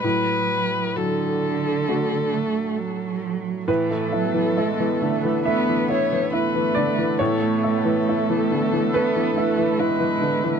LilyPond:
<<
  \new Staff \with { instrumentName = "Analog synth pad" } { \time 4/4 \key a \major \tempo 4 = 68 r1 | <b b' e''>1 | <b b' e''>1 | }
  \new Staff \with { instrumentName = "Violin" } { \time 4/4 \key a \major b'4 a'2~ a'8 r8 | a'2 b'8 cis''8 b'4 | a'8 a'2~ a'8 b'4 | }
  \new Staff \with { instrumentName = "Cello" } { \clef bass \time 4/4 \key a \major fis4 d4. a8 fis4 | e8 fis8 gis8 a8 b4 a4 | a2 b8 a8 gis4 | }
  \new Staff \with { instrumentName = "Upright piano" } { \time 4/4 \key a \major r1 | b'2 e''4. d''8 | cis''2 b'2 | }
  \new Staff \with { instrumentName = "Upright piano" } { \clef bass \time 4/4 \key a \major a,4 fis4 <a d' fis'>2 | a,16 a16 e'16 e16 e'16 e16 d16 e16 a16 e16 e'16 e16 e'16 e16 d16 e16 | a,16 a16 e'16 e16 e'16 e16 d16 e16 a16 e16 e'16 e16 e'16 e16 d16 e16 | }
>>